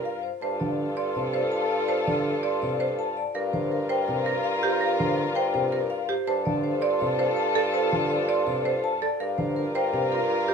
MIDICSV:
0, 0, Header, 1, 7, 480
1, 0, Start_track
1, 0, Tempo, 365854
1, 555, Time_signature, 4, 2, 24, 8
1, 13827, End_track
2, 0, Start_track
2, 0, Title_t, "Vibraphone"
2, 0, Program_c, 0, 11
2, 0, Note_on_c, 0, 70, 51
2, 70, Note_on_c, 0, 77, 72
2, 144, Note_off_c, 0, 70, 0
2, 300, Note_on_c, 0, 72, 51
2, 385, Note_off_c, 0, 77, 0
2, 545, Note_on_c, 0, 81, 59
2, 621, Note_off_c, 0, 72, 0
2, 785, Note_on_c, 0, 74, 52
2, 863, Note_off_c, 0, 81, 0
2, 1103, Note_off_c, 0, 74, 0
2, 1269, Note_on_c, 0, 84, 72
2, 1508, Note_on_c, 0, 74, 58
2, 1585, Note_off_c, 0, 84, 0
2, 1749, Note_on_c, 0, 72, 57
2, 1824, Note_off_c, 0, 74, 0
2, 1990, Note_on_c, 0, 81, 76
2, 2065, Note_off_c, 0, 72, 0
2, 2230, Note_on_c, 0, 74, 60
2, 2305, Note_off_c, 0, 81, 0
2, 2466, Note_on_c, 0, 81, 69
2, 2545, Note_off_c, 0, 74, 0
2, 2715, Note_on_c, 0, 74, 58
2, 2783, Note_off_c, 0, 81, 0
2, 3027, Note_off_c, 0, 74, 0
2, 3200, Note_on_c, 0, 84, 72
2, 3437, Note_on_c, 0, 74, 66
2, 3509, Note_off_c, 0, 84, 0
2, 3678, Note_on_c, 0, 72, 62
2, 3747, Note_off_c, 0, 74, 0
2, 3920, Note_on_c, 0, 81, 74
2, 3988, Note_off_c, 0, 72, 0
2, 4158, Note_on_c, 0, 74, 57
2, 4228, Note_off_c, 0, 81, 0
2, 4389, Note_on_c, 0, 77, 71
2, 4468, Note_off_c, 0, 74, 0
2, 4636, Note_on_c, 0, 72, 62
2, 4705, Note_off_c, 0, 77, 0
2, 4877, Note_on_c, 0, 70, 57
2, 4947, Note_off_c, 0, 72, 0
2, 5114, Note_on_c, 0, 79, 73
2, 5187, Note_off_c, 0, 70, 0
2, 5351, Note_on_c, 0, 72, 64
2, 5426, Note_off_c, 0, 79, 0
2, 5586, Note_on_c, 0, 70, 58
2, 5665, Note_off_c, 0, 72, 0
2, 5828, Note_on_c, 0, 77, 81
2, 5904, Note_off_c, 0, 70, 0
2, 6068, Note_on_c, 0, 72, 56
2, 6144, Note_off_c, 0, 77, 0
2, 6312, Note_on_c, 0, 77, 62
2, 6384, Note_off_c, 0, 72, 0
2, 6551, Note_on_c, 0, 72, 66
2, 6626, Note_off_c, 0, 77, 0
2, 6789, Note_on_c, 0, 70, 58
2, 6865, Note_off_c, 0, 72, 0
2, 7025, Note_on_c, 0, 79, 88
2, 7104, Note_off_c, 0, 70, 0
2, 7267, Note_on_c, 0, 72, 66
2, 7343, Note_off_c, 0, 79, 0
2, 7507, Note_on_c, 0, 70, 70
2, 7584, Note_off_c, 0, 72, 0
2, 7742, Note_on_c, 0, 77, 85
2, 7824, Note_off_c, 0, 70, 0
2, 7987, Note_on_c, 0, 72, 64
2, 8062, Note_off_c, 0, 77, 0
2, 8231, Note_on_c, 0, 81, 76
2, 8304, Note_off_c, 0, 72, 0
2, 8466, Note_on_c, 0, 74, 64
2, 8545, Note_off_c, 0, 81, 0
2, 8707, Note_on_c, 0, 72, 66
2, 8783, Note_off_c, 0, 74, 0
2, 8942, Note_on_c, 0, 84, 80
2, 9024, Note_off_c, 0, 72, 0
2, 9188, Note_on_c, 0, 74, 63
2, 9262, Note_off_c, 0, 84, 0
2, 9428, Note_on_c, 0, 72, 61
2, 9504, Note_off_c, 0, 74, 0
2, 9662, Note_on_c, 0, 81, 81
2, 9744, Note_off_c, 0, 72, 0
2, 9910, Note_on_c, 0, 74, 63
2, 9982, Note_off_c, 0, 81, 0
2, 10153, Note_on_c, 0, 81, 66
2, 10225, Note_off_c, 0, 74, 0
2, 10392, Note_on_c, 0, 74, 65
2, 10466, Note_off_c, 0, 81, 0
2, 10627, Note_on_c, 0, 72, 55
2, 10706, Note_off_c, 0, 74, 0
2, 10871, Note_on_c, 0, 84, 73
2, 10944, Note_off_c, 0, 72, 0
2, 11110, Note_on_c, 0, 74, 67
2, 11185, Note_off_c, 0, 84, 0
2, 11355, Note_on_c, 0, 72, 58
2, 11425, Note_off_c, 0, 74, 0
2, 11596, Note_on_c, 0, 81, 82
2, 11667, Note_off_c, 0, 72, 0
2, 11834, Note_on_c, 0, 74, 61
2, 11907, Note_off_c, 0, 81, 0
2, 12073, Note_on_c, 0, 77, 75
2, 12146, Note_off_c, 0, 74, 0
2, 12306, Note_on_c, 0, 72, 58
2, 12386, Note_off_c, 0, 77, 0
2, 12546, Note_on_c, 0, 70, 59
2, 12624, Note_off_c, 0, 72, 0
2, 12792, Note_on_c, 0, 79, 79
2, 12864, Note_off_c, 0, 70, 0
2, 13035, Note_on_c, 0, 72, 67
2, 13106, Note_off_c, 0, 79, 0
2, 13267, Note_on_c, 0, 70, 54
2, 13347, Note_off_c, 0, 72, 0
2, 13509, Note_on_c, 0, 77, 67
2, 13584, Note_off_c, 0, 70, 0
2, 13756, Note_on_c, 0, 72, 52
2, 13825, Note_off_c, 0, 77, 0
2, 13827, Note_off_c, 0, 72, 0
2, 13827, End_track
3, 0, Start_track
3, 0, Title_t, "Marimba"
3, 0, Program_c, 1, 12
3, 0, Note_on_c, 1, 70, 53
3, 146, Note_off_c, 1, 70, 0
3, 556, Note_on_c, 1, 72, 51
3, 867, Note_off_c, 1, 72, 0
3, 1272, Note_on_c, 1, 74, 55
3, 1586, Note_off_c, 1, 74, 0
3, 1752, Note_on_c, 1, 72, 52
3, 2066, Note_off_c, 1, 72, 0
3, 2474, Note_on_c, 1, 72, 61
3, 2786, Note_off_c, 1, 72, 0
3, 3190, Note_on_c, 1, 74, 59
3, 3505, Note_off_c, 1, 74, 0
3, 3674, Note_on_c, 1, 72, 60
3, 3986, Note_off_c, 1, 72, 0
3, 4396, Note_on_c, 1, 70, 57
3, 4707, Note_off_c, 1, 70, 0
3, 5108, Note_on_c, 1, 72, 62
3, 5424, Note_off_c, 1, 72, 0
3, 5591, Note_on_c, 1, 70, 61
3, 5905, Note_off_c, 1, 70, 0
3, 6075, Note_on_c, 1, 67, 85
3, 6310, Note_on_c, 1, 70, 63
3, 6387, Note_off_c, 1, 67, 0
3, 6625, Note_off_c, 1, 70, 0
3, 7034, Note_on_c, 1, 72, 64
3, 7346, Note_off_c, 1, 72, 0
3, 7510, Note_on_c, 1, 70, 70
3, 7825, Note_off_c, 1, 70, 0
3, 7989, Note_on_c, 1, 67, 81
3, 8234, Note_on_c, 1, 72, 62
3, 8305, Note_off_c, 1, 67, 0
3, 8546, Note_off_c, 1, 72, 0
3, 8949, Note_on_c, 1, 74, 65
3, 9264, Note_off_c, 1, 74, 0
3, 9435, Note_on_c, 1, 72, 70
3, 9747, Note_off_c, 1, 72, 0
3, 9910, Note_on_c, 1, 69, 86
3, 10155, Note_on_c, 1, 72, 57
3, 10225, Note_off_c, 1, 69, 0
3, 10467, Note_off_c, 1, 72, 0
3, 10872, Note_on_c, 1, 74, 61
3, 11185, Note_off_c, 1, 74, 0
3, 11354, Note_on_c, 1, 72, 58
3, 11666, Note_off_c, 1, 72, 0
3, 11834, Note_on_c, 1, 69, 77
3, 12074, Note_on_c, 1, 70, 51
3, 12146, Note_off_c, 1, 69, 0
3, 12386, Note_off_c, 1, 70, 0
3, 12797, Note_on_c, 1, 72, 63
3, 13107, Note_off_c, 1, 72, 0
3, 13277, Note_on_c, 1, 70, 59
3, 13587, Note_off_c, 1, 70, 0
3, 13755, Note_on_c, 1, 67, 65
3, 13827, Note_off_c, 1, 67, 0
3, 13827, End_track
4, 0, Start_track
4, 0, Title_t, "Soprano saxophone"
4, 0, Program_c, 2, 64
4, 0, Note_on_c, 2, 70, 72
4, 264, Note_off_c, 2, 70, 0
4, 555, Note_on_c, 2, 69, 62
4, 4102, Note_off_c, 2, 69, 0
4, 4394, Note_on_c, 2, 70, 76
4, 7942, Note_off_c, 2, 70, 0
4, 8238, Note_on_c, 2, 69, 77
4, 11784, Note_off_c, 2, 69, 0
4, 12070, Note_on_c, 2, 70, 75
4, 13827, Note_off_c, 2, 70, 0
4, 13827, End_track
5, 0, Start_track
5, 0, Title_t, "String section"
5, 0, Program_c, 3, 48
5, 0, Note_on_c, 3, 65, 66
5, 0, Note_on_c, 3, 70, 68
5, 262, Note_off_c, 3, 65, 0
5, 264, Note_off_c, 3, 70, 0
5, 554, Note_on_c, 3, 69, 63
5, 558, Note_on_c, 3, 65, 60
5, 4102, Note_off_c, 3, 69, 0
5, 4104, Note_off_c, 3, 65, 0
5, 4398, Note_on_c, 3, 70, 65
5, 4400, Note_on_c, 3, 65, 75
5, 7943, Note_off_c, 3, 70, 0
5, 7945, Note_off_c, 3, 65, 0
5, 8233, Note_on_c, 3, 69, 75
5, 8237, Note_on_c, 3, 65, 68
5, 11781, Note_off_c, 3, 69, 0
5, 11783, Note_off_c, 3, 65, 0
5, 12069, Note_on_c, 3, 65, 68
5, 12076, Note_on_c, 3, 70, 66
5, 13827, Note_off_c, 3, 65, 0
5, 13827, Note_off_c, 3, 70, 0
5, 13827, End_track
6, 0, Start_track
6, 0, Title_t, "Grand piano"
6, 0, Program_c, 4, 0
6, 797, Note_on_c, 4, 50, 54
6, 1107, Note_off_c, 4, 50, 0
6, 1520, Note_on_c, 4, 48, 55
6, 1828, Note_off_c, 4, 48, 0
6, 2721, Note_on_c, 4, 50, 54
6, 3029, Note_off_c, 4, 50, 0
6, 3443, Note_on_c, 4, 48, 53
6, 3750, Note_off_c, 4, 48, 0
6, 4636, Note_on_c, 4, 50, 56
6, 4947, Note_off_c, 4, 50, 0
6, 5359, Note_on_c, 4, 48, 60
6, 5668, Note_off_c, 4, 48, 0
6, 6559, Note_on_c, 4, 50, 58
6, 6868, Note_off_c, 4, 50, 0
6, 7278, Note_on_c, 4, 48, 53
6, 7588, Note_off_c, 4, 48, 0
6, 8482, Note_on_c, 4, 50, 62
6, 8789, Note_off_c, 4, 50, 0
6, 9204, Note_on_c, 4, 48, 63
6, 9510, Note_off_c, 4, 48, 0
6, 10397, Note_on_c, 4, 50, 56
6, 10707, Note_off_c, 4, 50, 0
6, 11112, Note_on_c, 4, 48, 54
6, 11426, Note_off_c, 4, 48, 0
6, 12309, Note_on_c, 4, 50, 60
6, 12625, Note_off_c, 4, 50, 0
6, 13030, Note_on_c, 4, 48, 51
6, 13345, Note_off_c, 4, 48, 0
6, 13827, End_track
7, 0, Start_track
7, 0, Title_t, "Bassoon"
7, 0, Program_c, 5, 70
7, 0, Note_on_c, 5, 43, 63
7, 405, Note_off_c, 5, 43, 0
7, 552, Note_on_c, 5, 43, 61
7, 4245, Note_off_c, 5, 43, 0
7, 4399, Note_on_c, 5, 43, 59
7, 8088, Note_off_c, 5, 43, 0
7, 8241, Note_on_c, 5, 43, 60
7, 11929, Note_off_c, 5, 43, 0
7, 12079, Note_on_c, 5, 43, 61
7, 13827, Note_off_c, 5, 43, 0
7, 13827, End_track
0, 0, End_of_file